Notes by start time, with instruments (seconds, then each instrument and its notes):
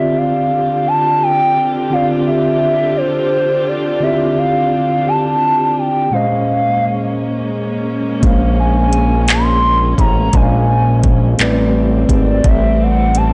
Already playing: tine electric piano D3 C4 F4 G4 D5, string section D3 C4 D4 F4 G4, soft synth lead E5
0.18 soft synth lead F5
0.88 soft synth lead A5
1.23 soft synth lead G5
1.90 tine electric piano D3 C4 F4, soft synth lead F5
1.94 tine electric piano G4 D5
2.27 soft synth lead E5
2.97 soft synth lead C5
3.68 soft synth lead D5
4.00 tine electric piano D3 C4 E4, soft synth lead E5
4.05 tine electric piano G4 D5
4.10 tine electric piano F4
4.38 soft synth lead F5
5.08 soft synth lead A5
5.78 soft synth lead G5
6.11 tine electric piano A#2 G#3 C#4 C5, string section G#3 A#3 C#4, soft synth lead F5
6.16 tine electric piano D#5
8.21 analog synth bass A#1, tine electric piano G#3 A#3 C#4, kick, closed hi-hat
8.26 tine electric piano C5 F5
8.60 soft synth lead G#5
8.93 closed hi-hat
9.28 soft synth lead C6, clap, closed hi-hat
9.98 analog synth bass A1, soft synth lead A#5, kick, closed hi-hat
10.33 analog synth bass A#1, tine electric piano A#2 G#3 C#4 C5 D#5, soft synth lead G#5, kick, closed hi-hat
10.43 tine electric piano F5
11.03 kick, closed hi-hat
11.38 analog synth bass A1, string section G3 A3 C4, tine electric piano G3 A3 C4 B4, clap, closed hi-hat
11.43 tine electric piano D5
12.09 analog synth bass G#1, soft synth lead D5, kick, closed hi-hat
12.44 analog synth bass A1, soft synth lead E5, kick, closed hi-hat
12.83 soft synth lead F#5
13.15 soft synth lead A5, closed hi-hat